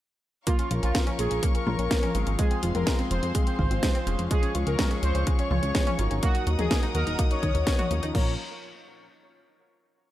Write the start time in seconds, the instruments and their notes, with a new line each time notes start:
0.47 synth arpeggio sound A#3, analog polysynth F4, string section A#4 C#5 F5 C#6, kick, closed hi-hat
0.59 synth arpeggio sound C#4, closed hi-hat
0.71 analog synth bass A#1, grand piano F3 A#3 C#4 A#4, synth arpeggio sound F4, closed hi-hat
0.83 analog synth bass A#1, synth arpeggio sound C#4, analog polysynth F4, closed hi-hat
0.95 synth arpeggio sound A#3, kick, snare, closed hi-hat
1.07 grand piano F3 A#3 C#4 A#4, synth arpeggio sound C#4, closed hi-hat
1.19 analog synth bass A#1, synth arpeggio sound F4, analog polysynth G#4, closed hi-hat
1.31 analog synth bass A#1, synth arpeggio sound C#4, closed hi-hat
1.43 grand piano F3 A#3 C#4 A#4, synth arpeggio sound A#3, kick, closed hi-hat
1.55 synth arpeggio sound C#4, analog polysynth A#4, closed hi-hat
1.67 analog synth bass A#1, synth arpeggio sound F4, high tom
1.79 analog synth bass A#1, grand piano F3 A#3 C#4 C#5, synth arpeggio sound C#4, closed hi-hat
1.91 synth arpeggio sound A#3, kick, snare, closed hi-hat
2.03 synth arpeggio sound C#4, closed hi-hat, high tom
2.15 analog synth bass G#1, grand piano F3 G#3 C4 G#4, synth arpeggio sound F4, closed hi-hat
2.27 analog synth bass G#1, synth arpeggio sound C#4, closed hi-hat
2.39 synth arpeggio sound G#3, string section G#4 C5 C6, analog polysynth G#4, kick, closed hi-hat
2.51 synth arpeggio sound C4, closed hi-hat
2.63 analog synth bass F1, grand piano F3 G#3 C4 G#4, synth arpeggio sound F4, closed hi-hat
2.75 analog synth bass F1, synth arpeggio sound C4, analog polysynth A#4, closed hi-hat, high tom
2.87 synth arpeggio sound G#3, kick, snare, closed hi-hat
2.99 grand piano F3 G#3 C4 G#4, synth arpeggio sound C4, closed hi-hat
3.11 analog synth bass F1, synth arpeggio sound F4, analog polysynth C5, closed hi-hat
3.23 analog synth bass F2, synth arpeggio sound C4, closed hi-hat
3.35 grand piano F3 G#3 C4 G#4, synth arpeggio sound G#3, kick, closed hi-hat
3.47 synth arpeggio sound C4, analog polysynth C5, closed hi-hat
3.59 analog synth bass G#1, synth arpeggio sound F4, kick
3.71 analog synth bass G#1, grand piano F3 G#3 C4 C5, synth arpeggio sound C4, closed hi-hat
3.83 synth arpeggio sound G#3, kick, snare, closed hi-hat
3.95 synth arpeggio sound C4, closed hi-hat
4.07 analog synth bass F1, grand piano F3 G#3 C#4 G#4, synth arpeggio sound F4, closed hi-hat
4.19 analog synth bass F1, synth arpeggio sound C4, closed hi-hat
4.31 synth arpeggio sound G#3, string section G#4 C#5 C#6, analog polysynth G#4, kick, closed hi-hat
4.43 synth arpeggio sound C#4, closed hi-hat
4.55 analog synth bass C#2, grand piano F3 G#3 C#4 G#4, synth arpeggio sound F4, closed hi-hat
4.67 analog synth bass C#2, synth arpeggio sound C#4, analog polysynth A#4, closed hi-hat
4.79 synth arpeggio sound G#3, kick, snare, closed hi-hat
4.91 grand piano F3 G#3 C#4 G#4, synth arpeggio sound C#4, closed hi-hat
5.03 analog synth bass C#2, synth arpeggio sound F4, analog polysynth C5, closed hi-hat
5.15 analog synth bass C#2, synth arpeggio sound C#4, closed hi-hat
5.27 grand piano F3 G#3 C#4 G#4, synth arpeggio sound G#3, kick, closed hi-hat
5.39 synth arpeggio sound C#4, analog polysynth C#5, closed hi-hat
5.51 analog synth bass C#2, synth arpeggio sound F4, high tom
5.63 analog synth bass C#2, grand piano F3 G#3 C#4 C#5, synth arpeggio sound C#4, closed hi-hat
5.75 synth arpeggio sound G#3, kick, snare, closed hi-hat
5.87 synth arpeggio sound C#4, closed hi-hat, high tom
5.99 analog synth bass G#1, grand piano F#3 A#3 D#4 A#4, synth arpeggio sound F4, closed hi-hat
6.11 analog synth bass G#1, synth arpeggio sound C#4, closed hi-hat
6.23 synth arpeggio sound A#3, analog polysynth F#4, string section A#4 D#5 F#5 D#6, kick, closed hi-hat
6.35 synth arpeggio sound D#4, closed hi-hat
6.47 analog synth bass D#2, grand piano F#3 A#3 D#4 A#4, synth arpeggio sound F#4, closed hi-hat
6.59 analog synth bass D#2, synth arpeggio sound D#4, analog polysynth G#4, closed hi-hat, high tom
6.71 synth arpeggio sound A#3, kick, snare, closed hi-hat
6.83 grand piano F#3 A#3 D#4 A#4, synth arpeggio sound D#4, closed hi-hat
6.95 analog synth bass D#2, synth arpeggio sound F#4, analog polysynth A#4, closed hi-hat
7.07 analog synth bass D#1, synth arpeggio sound D#4, closed hi-hat
7.19 grand piano F#3 A#3 D#4 A#4, synth arpeggio sound A#3, kick, closed hi-hat
7.31 synth arpeggio sound D#4, analog polysynth C#5, closed hi-hat
7.43 analog synth bass D#2, synth arpeggio sound D#5, kick, closed hi-hat
7.55 analog synth bass D#2, grand piano F#3 A#3 D#4 C#5, synth arpeggio sound A#4, closed hi-hat
7.67 synth arpeggio sound A#4, kick, snare, closed hi-hat
7.79 synth arpeggio sound F#4, closed hi-hat, high tom
7.91 analog synth bass D#2, grand piano F3 A#3 C#4 A#4, synth arpeggio sound A#3, closed hi-hat
8.03 analog synth bass D#2, synth arpeggio sound D#4, closed hi-hat
8.15 analog synth bass A#1, grand piano F3 A#3 C#4 A#4, synth arpeggio sound A#3, string section F4 A#4 C#5 A#5, analog polysynth C#5, kick, crash